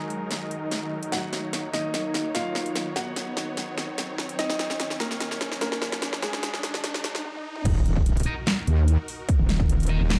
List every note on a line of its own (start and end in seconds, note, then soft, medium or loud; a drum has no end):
0.00 7.21 D#3 medium
0.00 7.21 F#3 medium
0.00 1.05 G#3 medium
0.00 7.21 D#4 medium
0.00 7.25 D#4 medium
0.00 1.05 G#4 medium
0.00 1.10 A#4 medium
0.00 7.25 D#5 medium
0.00 7.25 A#5 medium
0.00 riser medium
0.10 closed hi-hat soft
0.31 snare medium
0.31 closed hi-hat medium
0.51 closed hi-hat soft
0.71 snare medium
0.71 closed hi-hat medium
1.03 closed hi-hat medium
1.12 1.66 F#4 medium
1.12 7.23 C#5 medium
1.12 1.66 F#5 loud
1.12 snare medium
1.12 closed hi-hat medium
1.33 snare medium
1.33 closed hi-hat soft
1.53 snare medium
1.53 closed hi-hat medium
1.73 2.27 D#4 medium
1.73 2.27 D#5 medium
1.73 snare medium
1.73 closed hi-hat soft
1.94 snare medium
1.94 closed hi-hat medium
2.14 snare medium
2.14 closed hi-hat soft
2.35 2.88 F4 medium
2.35 2.88 F5 medium
2.35 snare medium
2.35 closed hi-hat medium
2.55 snare medium
2.66 closed hi-hat medium
2.76 snare medium
2.76 closed hi-hat medium
2.96 4.31 F#4 medium
2.96 4.31 F#5 medium
2.96 snare medium
2.96 closed hi-hat medium
3.16 snare medium
3.16 closed hi-hat medium
3.37 snare medium
3.37 closed hi-hat soft
3.57 snare medium
3.57 closed hi-hat medium
3.78 snare medium
3.78 closed hi-hat medium
3.98 snare medium
3.98 closed hi-hat medium
4.18 snare medium
4.29 closed hi-hat medium
4.39 4.92 D#4 medium
4.39 4.92 D#5 loud
4.39 snare medium
4.39 closed hi-hat medium
4.50 snare medium
4.59 snare medium
4.59 closed hi-hat medium
4.70 snare medium
4.80 snare medium
4.80 closed hi-hat medium
4.90 snare medium
5.00 5.54 A#3 medium
5.00 5.54 A#4 medium
5.00 snare medium
5.00 closed hi-hat medium
5.11 snare medium
5.20 snare medium
5.20 closed hi-hat medium
5.31 snare medium
5.41 snare loud
5.41 closed hi-hat medium
5.52 snare medium
5.61 6.15 A#3 medium
5.61 6.15 A#4 medium
5.61 snare loud
5.61 closed hi-hat medium
5.72 snare medium
5.82 snare loud
5.92 snare medium
5.92 closed hi-hat medium
6.02 snare loud
6.02 closed hi-hat medium
6.13 snare medium
6.22 7.25 G#3 medium
6.22 7.25 G#4 medium
6.22 snare loud
6.22 closed hi-hat medium
6.33 snare medium
6.33 closed hi-hat soft
6.43 snare loud
6.43 closed hi-hat medium
6.54 snare medium
6.63 snare loud
6.63 closed hi-hat medium
6.74 snare medium
6.84 snare loud
6.84 closed hi-hat medium
6.94 snare medium
7.04 snare loud
7.04 closed hi-hat medium
7.15 snare medium
7.24 high tom medium
7.35 high tom medium
7.56 mid tom medium
7.65 8.25 D#1 loud
7.65 10.19 D#4 medium
7.65 10.19 F#4 medium
7.65 10.19 A#4 medium
7.65 kick loud
7.65 closed hi-hat medium
7.65 crash loud
7.65 impact medium
7.86 closed hi-hat medium
7.96 kick loud
8.06 closed hi-hat medium
8.17 closed hi-hat medium
8.20 closed hi-hat medium
8.23 8.33 D#4 medium
8.23 8.33 A#4 medium
8.23 8.33 D#5 loud
8.23 closed hi-hat medium
8.47 snare loud
8.47 clap medium
8.47 closed hi-hat medium
8.67 8.97 D#2 loud
8.67 closed hi-hat medium
8.88 closed hi-hat medium
9.08 open hi-hat medium
9.29 kick loud
9.29 closed hi-hat medium
9.39 9.99 D#1 loud
9.49 snare medium
9.49 closed hi-hat medium
9.60 kick loud
9.69 closed hi-hat medium
9.80 closed hi-hat soft
9.83 closed hi-hat medium
9.87 10.00 A#4 medium
9.87 10.00 D#5 medium
9.87 closed hi-hat medium
9.91 10.00 D#4 medium
10.01 10.19 D#1 loud
10.10 snare loud
10.10 clap medium
10.10 closed hi-hat medium